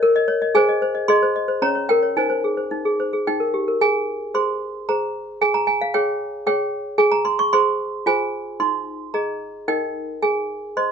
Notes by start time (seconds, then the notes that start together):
Already playing: G5
0.03 A#4
0.16 D#5
0.28 C#5
0.42 D#5
0.55 G#4 C5 G#5
0.69 D#5
0.82 C5
0.95 D#5
1.08 G#4 D#5 C6
1.22 C5
1.36 D#5
1.48 C5
1.62 C#4 C#5 A#5
1.75 C#5
1.89 A#4 G5
2.03 C#5
2.17 D#4 C5 G#5
2.30 C5
2.44 G#4
2.57 C5
2.71 D#4
2.85 G#4
3.00 C5
3.13 G#4
3.27 D#4 G5
3.40 A#4
3.54 G4
3.68 A#4
3.81 G#4 G#5
4.34 G#4 C5 C6
4.89 G#4 C5 A#5
5.41 G#4 G#5
5.54 A#5
5.67 G#5
5.81 F5
5.94 G#4 C#5 G5
6.47 G#4 C#5 G5
6.98 G#4 G#5
7.12 A#5
7.25 C6
7.39 C#6
7.53 G#4 C5 C6
8.06 F4 G#4 C5 G#5
8.60 D#4 C6
9.14 G#4 D#5 A#5
9.68 D#4 A#4 D#5 G5
10.22 G#4 G#5
10.77 C5 D#5 C6